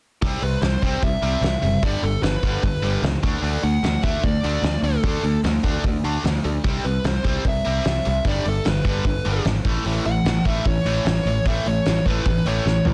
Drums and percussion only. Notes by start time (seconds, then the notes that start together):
0.22 kick, open hi-hat
0.42 open hi-hat
0.62 snare, open hi-hat
0.82 kick, open hi-hat
1.03 kick, open hi-hat
1.23 open hi-hat
1.43 snare, open hi-hat
1.63 open hi-hat
1.83 kick, open hi-hat
2.04 open hi-hat
2.23 snare, open hi-hat
2.43 kick, open hi-hat
2.63 kick, open hi-hat
2.84 open hi-hat
3.04 snare, open hi-hat
3.23 kick, open hi-hat
3.44 open hi-hat
3.64 open hi-hat
3.84 snare, open hi-hat
4.04 kick, open hi-hat
4.24 kick, open hi-hat
4.44 open hi-hat
4.63 snare, open hi-hat
4.84 open hi-hat
5.04 kick, open hi-hat
5.24 open hi-hat
5.44 snare, open hi-hat
5.64 kick, open hi-hat
5.84 kick, open hi-hat
6.04 open hi-hat
6.25 snare, open hi-hat
6.45 open hi-hat
6.64 kick, open hi-hat
6.85 open hi-hat
7.04 snare, open hi-hat
7.25 kick, open hi-hat
7.45 kick, open hi-hat
7.65 open hi-hat
7.85 snare, open hi-hat
8.05 open hi-hat
8.25 kick, open hi-hat
8.45 open hi-hat
8.65 snare, open hi-hat
8.85 kick, open hi-hat
9.05 kick, open hi-hat
9.25 open hi-hat
9.45 snare, open hi-hat
9.65 kick, open hi-hat
9.85 open hi-hat
10.05 open hi-hat
10.25 snare, open hi-hat
10.45 kick, open hi-hat
10.65 kick, open hi-hat
10.86 open hi-hat
11.06 snare, open hi-hat
11.26 open hi-hat
11.45 kick, open hi-hat
11.66 open hi-hat
11.85 snare, open hi-hat
12.06 kick, open hi-hat
12.25 kick, open hi-hat
12.46 open hi-hat
12.67 snare
12.85 floor tom